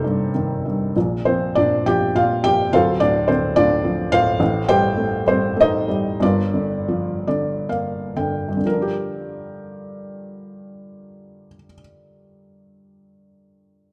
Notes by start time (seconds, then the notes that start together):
Already playing: G1 G2 C3 D#3 A3 A#3 C4 D4 D#4 G4 A4 A#4 C5 D5
0.04 G2
0.34 D#3
0.66 G2
0.96 A#1 A#2
1.25 F3 C4 C5
1.55 A#2 D4 D5
1.86 F3 G4 G5
2.15 A#2 F4 F5
2.43 F3 G4 G5
2.73 D1 D2 F4 A4 C5 F5
3.00 A2 D4 D5
3.28 D3 C4 C5
3.56 A2 D4 F4 D5
3.84 F3
4.12 A2 F4 C5 F5
4.40 A1 A2
4.69 G3 G4 C5 G5
4.97 A3
5.26 G3 C4 C5
5.56 A3
5.61 D#4 C5 D#5
5.88 G3
6.20 G1 G2 D4 F4 A#4 D5
6.54 D3
6.88 F3
7.27 D3 D5
7.69 A#3 F5
8.16 D3 G5
8.49 G2
8.57 D3
8.65 F3 A#4
8.74 D4
8.82 G4